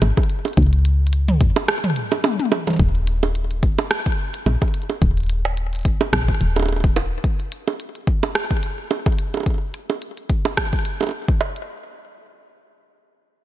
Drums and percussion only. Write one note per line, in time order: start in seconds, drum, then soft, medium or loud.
0.02 closed hi-hat loud
0.02 high bongo medium
0.17 kick loud
0.17 high bongo soft
0.23 closed hi-hat soft
0.30 closed hi-hat soft
0.45 closed hi-hat soft
0.45 high bongo soft
0.48 closed hi-hat soft
0.53 closed hi-hat soft
0.57 kick medium
0.57 closed hi-hat medium
0.63 closed hi-hat soft
0.67 closed hi-hat soft
0.73 closed hi-hat soft
0.85 closed hi-hat medium
1.07 closed hi-hat soft
1.13 closed hi-hat loud
1.28 closed hi-hat soft
1.28 mid tom medium
1.41 kick medium
1.41 closed hi-hat medium
1.56 closed hi-hat soft
1.56 high bongo medium
1.68 cross-stick loud
1.84 closed hi-hat soft
1.84 mid tom medium
1.96 closed hi-hat medium
2.12 closed hi-hat soft
2.12 high bongo medium
2.24 closed hi-hat loud
2.24 high tom medium
2.24 high bongo medium
2.40 closed hi-hat soft
2.40 high tom medium
2.52 closed hi-hat soft
2.52 high bongo medium
2.67 closed hi-hat soft
2.67 mid tom medium
2.67 high bongo soft
2.70 closed hi-hat soft
2.70 mid tom medium
2.73 closed hi-hat soft
2.73 mid tom medium
2.76 closed hi-hat soft
2.76 mid tom soft
2.80 kick medium
2.80 closed hi-hat medium
2.95 closed hi-hat soft
3.07 closed hi-hat medium
3.23 closed hi-hat medium
3.23 high bongo medium
3.35 closed hi-hat soft
3.51 closed hi-hat soft
3.63 kick medium
3.63 closed hi-hat loud
3.78 closed hi-hat medium
3.78 high bongo medium
3.91 cross-stick loud
3.91 closed hi-hat medium
4.06 kick medium
4.06 closed hi-hat soft
4.34 closed hi-hat medium
4.46 closed hi-hat medium
4.46 high bongo medium
4.62 kick loud
4.62 closed hi-hat soft
4.62 high bongo soft
4.68 closed hi-hat soft
4.74 closed hi-hat medium
4.82 closed hi-hat soft
4.90 closed hi-hat medium
4.90 high bongo soft
5.02 kick medium
5.02 closed hi-hat medium
5.17 closed hi-hat soft
5.20 closed hi-hat soft
5.23 closed hi-hat soft
5.27 closed hi-hat soft
5.30 closed hi-hat medium
5.45 closed hi-hat medium
5.45 high bongo soft
5.57 closed hi-hat medium
5.73 closed hi-hat soft
5.75 closed hi-hat soft
5.79 closed hi-hat soft
5.81 closed hi-hat soft
5.83 kick medium
5.83 closed hi-hat soft
5.85 closed hi-hat medium
6.01 closed hi-hat medium
6.01 high bongo medium
6.13 kick medium
6.13 cross-stick loud
6.13 closed hi-hat medium
6.28 kick medium
6.28 closed hi-hat soft
6.41 closed hi-hat medium
6.56 closed hi-hat medium
6.56 high bongo medium
6.59 high bongo soft
6.62 high bongo soft
6.66 closed hi-hat medium
6.66 high bongo soft
6.69 high bongo soft
6.72 high bongo soft
6.76 high bongo soft
6.80 kick loud
6.80 closed hi-hat soft
6.80 high bongo soft
6.96 closed hi-hat medium
6.96 high bongo medium
7.24 kick medium
7.24 closed hi-hat medium
7.40 closed hi-hat soft
7.52 closed hi-hat medium
7.68 closed hi-hat medium
7.68 high bongo soft
7.80 closed hi-hat medium
7.95 closed hi-hat soft
8.07 kick medium
8.23 closed hi-hat medium
8.23 high bongo medium
8.35 cross-stick loud
8.35 closed hi-hat soft
8.51 kick medium
8.51 closed hi-hat soft
8.63 closed hi-hat medium
8.91 closed hi-hat medium
8.91 high bongo medium
9.06 kick loud
9.06 high bongo soft
9.12 closed hi-hat soft
9.19 closed hi-hat medium
9.34 closed hi-hat soft
9.34 high bongo soft
9.37 high bongo soft
9.40 high bongo soft
9.43 kick medium
9.43 closed hi-hat soft
9.43 high bongo soft
9.46 high bongo soft
9.50 high bongo soft
9.54 high bongo soft
9.58 high bongo soft
9.74 closed hi-hat medium
9.90 closed hi-hat soft
9.90 high bongo soft
10.02 closed hi-hat soft
10.17 closed hi-hat soft
10.30 kick medium
10.30 closed hi-hat medium
10.45 high bongo medium
10.57 kick medium
10.57 cross-stick loud
10.57 closed hi-hat soft
10.73 kick medium
10.73 closed hi-hat soft
10.76 closed hi-hat soft
10.81 closed hi-hat soft
10.85 closed hi-hat medium
10.90 closed hi-hat soft
10.94 closed hi-hat soft
11.01 closed hi-hat soft
11.01 high bongo medium
11.03 closed hi-hat soft
11.03 high bongo soft
11.07 closed hi-hat soft
11.07 high bongo soft
11.09 closed hi-hat soft
11.09 high bongo soft
11.11 high bongo soft
11.28 kick loud
11.28 closed hi-hat soft
11.41 closed hi-hat medium
11.41 high bongo medium
11.56 closed hi-hat soft